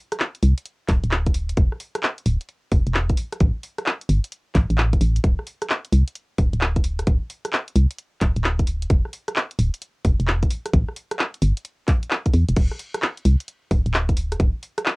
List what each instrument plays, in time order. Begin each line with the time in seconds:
0.12 cross-stick, closed hi-hat
0.20 clap
0.35 closed hi-hat
0.43 fm bass C2, open hi-hat
0.58 closed hi-hat
0.66 closed hi-hat
0.89 fm bass D1, kick, clap, open hi-hat
1.04 fm bass D1, closed hi-hat
1.11 clap
1.26 kick, closed hi-hat
1.34 open hi-hat
1.49 closed hi-hat
1.57 fm bass E1, kick, closed hi-hat
1.72 cross-stick
1.80 open hi-hat
1.95 cross-stick, closed hi-hat
2.03 clap
2.18 closed hi-hat
2.26 fm bass D1, open hi-hat
2.41 closed hi-hat
2.49 closed hi-hat
2.72 fm bass E1, kick, open hi-hat
2.87 fm bass E1, closed hi-hat
2.95 clap
3.10 kick, closed hi-hat
3.17 open hi-hat
3.32 cross-stick, closed hi-hat
3.40 fm bass A1, kick, closed hi-hat
3.63 open hi-hat
3.78 cross-stick, closed hi-hat
3.86 clap
4.01 closed hi-hat
4.09 fm bass G1, open hi-hat
4.24 closed hi-hat
4.32 closed hi-hat
4.55 fm bass A1, kick, clap, open hi-hat
4.70 fm bass A1, closed hi-hat
4.78 clap
4.93 fm bass E1, kick, closed hi-hat
5.01 fm bass A1, open hi-hat
5.16 closed hi-hat
5.24 fm bass D1, kick, closed hi-hat
5.39 cross-stick
5.47 open hi-hat
5.62 cross-stick, closed hi-hat
5.70 clap
5.85 closed hi-hat
5.92 fm bass C2, open hi-hat
6.08 closed hi-hat
6.15 closed hi-hat
6.38 fm bass D1, kick, open hi-hat
6.53 fm bass D1, closed hi-hat
6.61 clap
6.76 kick, closed hi-hat
6.84 open hi-hat
6.99 cross-stick, closed hi-hat
7.07 fm bass D1, kick, closed hi-hat
7.30 open hi-hat
7.45 cross-stick, closed hi-hat
7.53 clap
7.68 closed hi-hat
7.76 fm bass C2, open hi-hat
7.91 closed hi-hat
7.98 closed hi-hat
8.21 fm bass D1, kick, clap, open hi-hat
8.36 fm bass D1, closed hi-hat
8.44 clap
8.59 kick, closed hi-hat
8.67 open hi-hat
8.82 closed hi-hat
8.90 fm bass E1, kick, closed hi-hat
9.05 cross-stick
9.13 open hi-hat
9.28 cross-stick, closed hi-hat
9.36 clap
9.51 closed hi-hat
9.59 fm bass D1, open hi-hat
9.74 closed hi-hat
9.82 closed hi-hat
10.05 fm bass E1, kick, open hi-hat
10.20 fm bass E1, closed hi-hat
10.28 clap
10.43 kick, closed hi-hat
10.50 open hi-hat
10.66 cross-stick, closed hi-hat
10.73 fm bass A1, kick, closed hi-hat
10.88 cross-stick
10.96 open hi-hat
11.11 cross-stick, closed hi-hat
11.19 clap
11.34 closed hi-hat
11.42 fm bass G1, open hi-hat
11.57 closed hi-hat
11.65 closed hi-hat
11.88 kick, clap, open hi-hat
12.03 closed hi-hat
12.11 clap
12.26 kick, closed hi-hat
12.34 fm bass E2, open hi-hat
12.49 fm bass E1, closed hi-hat
12.56 fm bass D1, kick, closed hi-hat, crash
12.72 cross-stick
12.79 open hi-hat
12.94 cross-stick, closed hi-hat
13.02 clap
13.17 closed hi-hat
13.25 fm bass C2, open hi-hat
13.40 closed hi-hat
13.48 closed hi-hat
13.71 fm bass D1, kick, open hi-hat
13.86 fm bass D1, closed hi-hat
13.94 clap
14.09 kick, closed hi-hat
14.17 open hi-hat
14.32 cross-stick, closed hi-hat
14.40 fm bass D1, kick, closed hi-hat
14.63 open hi-hat
14.78 cross-stick, closed hi-hat
14.86 clap